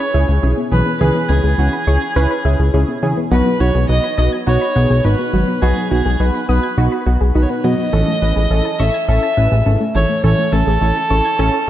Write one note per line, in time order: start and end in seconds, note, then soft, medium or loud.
0.00 0.39 C#5 loud
0.00 0.11 B5 loud
0.14 0.25 C#2 loud
0.14 0.31 C#4 medium
0.14 0.31 E4 medium
0.14 0.31 G#4 medium
0.14 0.25 E5 medium
0.29 0.39 C#2 medium
0.29 0.40 G#4 medium
0.43 0.54 B1 medium
0.43 0.60 C#4 medium
0.43 0.54 C#4 medium
0.43 0.60 E4 medium
0.43 0.60 G#4 medium
0.58 0.68 B3 medium
0.72 0.83 B1 loud
0.72 0.83 E3 medium
0.72 0.89 C#4 medium
0.72 0.89 E4 medium
0.72 0.89 G#4 medium
0.72 0.99 B4 loud
0.86 0.97 B3 medium
1.01 1.11 C#2 loud
1.01 1.12 E3 medium
1.01 1.18 C#4 medium
1.01 1.18 E4 medium
1.01 1.18 G#4 loud
1.01 1.31 B4 loud
1.15 1.26 B3 medium
1.29 1.40 C#2 loud
1.29 1.41 C#4 medium
1.29 1.47 C#4 medium
1.29 1.47 E4 medium
1.29 3.03 G#4 loud
1.29 1.47 G#4 medium
1.44 1.55 C#2 medium
1.44 1.55 G#4 medium
1.58 1.69 C#2 loud
1.58 1.76 C#4 medium
1.58 1.76 E4 medium
1.58 1.76 F#4 medium
1.73 1.84 B5 medium
1.87 1.98 C#2 loud
1.87 2.05 C#4 medium
1.87 2.05 E4 medium
1.87 2.05 G#4 medium
1.87 1.98 C#6 loud
2.02 2.13 G#6 medium
2.16 2.27 C#2 loud
2.16 2.33 C#4 loud
2.16 2.33 E4 loud
2.16 2.33 B4 loud
2.31 2.42 B5 loud
2.45 2.56 C#2 loud
2.45 2.62 C#4 medium
2.45 2.62 E4 medium
2.45 2.62 G#4 loud
2.45 2.56 E5 medium
2.59 2.70 C#2 loud
2.59 2.70 G#4 medium
2.74 2.85 C#2 loud
2.74 2.85 C#4 medium
2.74 2.91 C#4 medium
2.74 2.91 E4 medium
2.74 2.91 G#4 loud
2.88 2.99 B3 medium
3.03 3.13 C#3 medium
3.03 3.14 E3 medium
3.03 3.20 C#4 medium
3.03 3.20 E4 medium
3.03 3.20 G#4 medium
3.17 3.28 B3 medium
3.31 3.42 B1 loud
3.31 3.43 F#3 medium
3.31 3.49 B3 loud
3.31 3.49 D#4 medium
3.31 3.49 F#4 loud
3.31 3.62 B4 loud
3.46 3.57 B3 medium
3.60 3.71 B1 loud
3.60 3.78 B3 medium
3.60 3.71 D#4 medium
3.60 3.78 D#4 medium
3.60 3.78 F#4 medium
3.60 3.89 C#5 loud
3.75 3.85 B1 medium
3.75 3.86 G#4 loud
3.89 4.00 B1 loud
3.89 4.07 B3 medium
3.89 4.07 D#4 medium
3.89 4.07 F#4 medium
3.89 4.16 D#5 loud
4.04 4.15 B5 medium
4.18 4.29 B1 loud
4.18 4.35 B3 medium
4.18 4.35 D#4 medium
4.18 4.35 F#4 medium
4.18 4.31 D#5 loud
4.18 4.29 D#6 loud
4.32 4.43 G#6 medium
4.47 4.58 B1 loud
4.47 4.64 B3 medium
4.47 4.64 D#4 medium
4.47 4.64 F#4 loud
4.47 5.06 C#5 loud
4.61 4.72 B5 loud
4.76 4.86 B1 loud
4.76 4.93 B3 medium
4.76 4.93 D#4 medium
4.76 4.93 G#4 medium
4.76 4.87 F#5 medium
4.90 5.01 B1 loud
4.90 5.01 G#4 medium
5.05 5.15 G#1 loud
5.05 5.22 B3 medium
5.05 5.16 D#4 medium
5.05 5.22 D#4 medium
5.05 5.22 F#4 medium
5.05 5.64 B4 medium
5.19 5.30 B3 medium
5.33 5.44 G#1 medium
5.33 5.44 F#3 medium
5.33 5.51 B3 medium
5.33 5.51 D#4 medium
5.33 5.51 F#4 medium
5.48 5.59 B3 medium
5.62 5.73 B1 loud
5.62 5.73 F#3 medium
5.62 5.80 B3 medium
5.62 5.80 D#4 medium
5.62 5.80 F#4 loud
5.62 5.90 G#4 medium
5.77 5.88 B3 medium
5.91 6.02 B1 loud
5.91 6.08 B3 medium
5.91 6.02 D#4 medium
5.91 6.08 D#4 medium
5.91 6.08 F#4 medium
5.91 6.21 G#4 medium
6.06 6.16 B1 medium
6.06 6.17 G#4 loud
6.20 6.31 B1 loud
6.20 6.37 B3 medium
6.20 6.37 D#4 medium
6.20 6.37 F#4 medium
6.20 6.48 B4 medium
6.34 6.45 B5 medium
6.49 6.60 B1 medium
6.49 6.66 B3 medium
6.49 6.66 D#4 medium
6.49 6.66 F#4 medium
6.49 7.03 B4 medium
6.49 6.60 D#6 loud
6.63 6.74 G#6 medium
6.78 6.88 B1 loud
6.78 6.95 B3 medium
6.78 6.95 D#4 medium
6.78 6.95 F#4 loud
6.92 7.03 B5 loud
7.06 7.17 B1 loud
7.06 7.24 B3 medium
7.06 7.24 D#4 medium
7.06 7.24 F#4 medium
7.06 7.17 F#5 medium
7.21 7.32 B1 loud
7.21 7.32 G#4 medium
7.35 7.46 B1 loud
7.35 7.53 B3 medium
7.35 7.46 D#4 medium
7.35 7.53 D#4 medium
7.35 7.53 F#4 medium
7.35 7.44 B4 medium
7.42 7.51 C#5 medium
7.50 7.61 B3 medium
7.50 7.66 B4 medium
7.64 7.75 B2 loud
7.64 7.75 F#3 medium
7.64 7.81 B3 medium
7.64 7.81 D#4 medium
7.64 7.81 F#4 medium
7.64 8.81 D#5 loud
7.79 7.90 B3 medium
7.93 8.04 A1 loud
7.93 8.04 E3 medium
7.93 8.10 C#4 medium
7.93 8.10 E4 medium
7.93 8.10 A4 loud
8.07 8.18 A3 medium
8.22 8.33 A1 loud
8.22 8.33 C#4 medium
8.22 8.39 C#4 medium
8.22 8.39 E4 medium
8.22 8.39 B4 medium
8.36 8.47 A1 loud
8.36 8.47 G#4 medium
8.51 8.61 A1 loud
8.51 8.68 C#4 medium
8.51 8.68 E4 medium
8.51 8.68 A4 medium
8.65 8.76 A5 medium
8.80 8.90 A1 loud
8.80 8.97 C#4 medium
8.80 8.97 E4 medium
8.80 8.97 A4 medium
8.80 9.08 E5 loud
8.80 8.91 C#6 loud
8.94 9.05 G#6 medium
9.08 9.19 A1 loud
9.08 9.26 C#4 medium
9.08 9.26 E4 medium
9.08 9.26 A4 loud
9.08 9.62 E5 loud
9.23 9.34 A5 loud
9.37 9.48 A1 medium
9.37 9.55 C#4 medium
9.37 9.55 E4 medium
9.37 9.55 B4 medium
9.37 9.48 E5 medium
9.52 9.62 A1 loud
9.52 9.63 G#4 medium
9.66 9.77 G#1 medium
9.66 9.77 C#4 medium
9.66 9.83 C#4 medium
9.66 9.83 E4 medium
9.66 9.83 A4 medium
9.81 9.92 A3 medium
9.95 10.06 G#1 medium
9.95 10.06 E3 medium
9.95 10.12 C#4 medium
9.95 10.12 E4 medium
9.95 10.12 A4 medium
9.95 10.22 C#5 loud
10.09 10.20 A3 medium
10.24 10.35 A1 loud
10.24 10.35 E3 medium
10.24 10.41 C#4 loud
10.24 10.41 E4 medium
10.24 10.41 A4 loud
10.24 10.54 C#5 loud
10.38 10.49 A3 medium
10.53 10.63 A1 loud
10.53 10.64 C#4 medium
10.53 10.70 C#4 medium
10.53 10.70 E4 medium
10.53 10.70 A4 medium
10.53 11.70 A4 loud
10.67 10.78 A1 loud
10.67 10.78 G#4 medium
10.81 10.92 A1 loud
10.81 10.99 C#4 medium
10.81 10.99 E4 medium
10.81 10.99 A4 medium
10.96 11.07 A5 medium
11.10 11.21 A1 medium
11.10 11.28 C#4 medium
11.10 11.28 E4 medium
11.10 11.28 A4 medium
11.10 11.21 C#6 loud
11.25 11.36 G#6 medium
11.39 11.50 A1 loud
11.39 11.56 C#4 loud
11.39 11.56 E4 loud
11.39 11.56 A4 loud
11.54 11.65 A5 loud